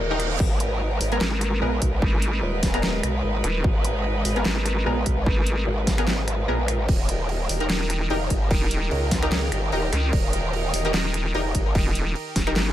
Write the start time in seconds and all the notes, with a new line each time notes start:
Already playing: D#3 D#4 G4 A#4, reverse cymbal
0.00 D#1
0.10 D#4 G4 A#4
0.20 finger snap, closed hi-hat
0.40 G#1 G#3 D#4 B4, kick, crash
0.60 closed hi-hat
1.01 G#1, open hi-hat
1.12 B3 G#4 A#4, closed hi-hat
1.21 G#1, snare, clap
1.41 finger snap, closed hi-hat
1.62 A#1 B3 G#4 A#4
1.82 B1, kick, closed hi-hat
2.02 G#1, kick
2.22 closed hi-hat
2.43 D#1
2.63 kick, snare, open hi-hat
2.74 B3 G#4 A#4, finger snap, closed hi-hat
2.83 snare, clap
3.03 B1, finger snap, closed hi-hat
3.24 G#1
3.44 D#1, finger snap, closed hi-hat
3.64 G#1, kick
3.85 closed hi-hat
4.25 G#1, open hi-hat
4.36 B3 G#4 A#4, closed hi-hat
4.45 G#1, snare, clap
4.66 finger snap, closed hi-hat
4.86 A#1 B3 G#4 A#4
5.06 B1, kick, closed hi-hat
5.26 G#1, kick
5.47 closed hi-hat
5.67 G#1
5.87 kick, snare, open hi-hat
5.98 B3 G#4 A#4, finger snap, closed hi-hat
6.07 snare, clap
6.28 finger snap, closed hi-hat
6.48 A#1 B3 G#4 A#4
6.68 finger snap, closed hi-hat
6.89 D#1 D#3 D#4 G4 A#4, kick, crash
7.09 closed hi-hat
7.29 crash
7.49 D#1, open hi-hat
7.60 D#4 G4 A#4, closed hi-hat
7.70 D#1, snare, clap, crash
7.90 finger snap, closed hi-hat
8.10 E1 D#4 G4 A#4, crash
8.30 G1, kick, closed hi-hat
8.51 D#1, kick, crash
8.71 closed hi-hat
8.91 C#2, crash
9.11 kick, snare, open hi-hat
9.23 D#4 G4 A#4, finger snap, closed hi-hat
9.32 snare, clap, crash
9.52 G1, finger snap, closed hi-hat
9.72 D#1 D#4 G4 A#4, crash
9.93 C#2, finger snap, closed hi-hat
10.13 D#1, kick, crash
10.33 closed hi-hat
10.53 crash
10.74 D#1, open hi-hat
10.85 D#4 G4 A#4, closed hi-hat
10.94 D#1, snare, clap, crash
11.14 finger snap, closed hi-hat
11.34 E1 D#4 G4 A#4, crash
11.55 G1, kick, closed hi-hat
11.75 D#1, kick, crash
11.95 closed hi-hat
12.16 crash
12.36 D#1, kick, snare, open hi-hat
12.47 D#4 G4 A#4, finger snap, closed hi-hat
12.56 G1, snare, clap, crash